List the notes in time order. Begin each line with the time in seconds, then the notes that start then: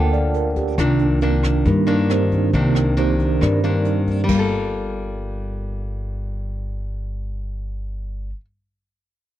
Already playing: D2 D3 A#3 F4 A4 A#4 C5 C#5 D5 F5 F#5 G5 A5
0.13 D5, closed hi-hat
0.34 A#4, closed hi-hat
0.56 G4, kick, closed hi-hat
0.78 C2 C3 D#3 A#3 D4 F4, kick, cross-stick, closed hi-hat
0.99 D4, closed hi-hat
1.21 D#3 A#3 D4, closed hi-hat
1.43 kick, cross-stick, closed hi-hat
1.65 G2 D#3 A#3 D4 D#4 G4 A#4, kick, closed hi-hat
1.87 D#3 A#3 D4, closed hi-hat
2.10 C4 D#4 G4 C5, cross-stick, closed hi-hat
2.32 kick, closed hi-hat
2.52 C2 C3 D#3 A#3 D4, kick, closed hi-hat
2.75 cross-stick, closed hi-hat
2.97 D#3 A#3 C4 D4 D#4 G4 C5, closed hi-hat
3.19 kick, closed hi-hat
3.41 G2 D4 G4 A#4 D5, kick, cross-stick, closed hi-hat
3.64 D#3 A#3 D4, closed hi-hat
3.85 closed hi-hat
4.07 kick, closed hi-hat
4.24 G3
4.29 G1 A#3, kick, crash
4.34 F4
4.39 A4